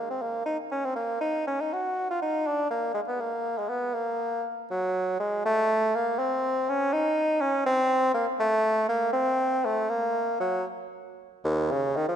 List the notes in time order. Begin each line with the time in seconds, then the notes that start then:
0.10 C4
0.22 A#3
0.46 D#4
0.71 C#4
0.85 C4
0.95 A#3
1.21 D#4
1.47 C#4
1.61 D#4
1.73 F#4
2.10 F4
2.22 D#4
2.47 D4
2.71 A#3
2.94 G#3
3.08 B3
3.21 A#3
3.58 G#3
3.69 B3
3.94 A#3
4.71 F#3
5.20 G#3
5.46 A3
5.95 A#3
6.19 C4
6.69 C#4
6.93 D#4
7.41 C#4
7.66 C4
8.14 A#3
8.40 A3
8.89 A#3
9.13 C4
9.65 A3
9.89 A#3
10.40 F#3
11.44 D#2
11.71 C#3
11.96 D#3
12.08 F3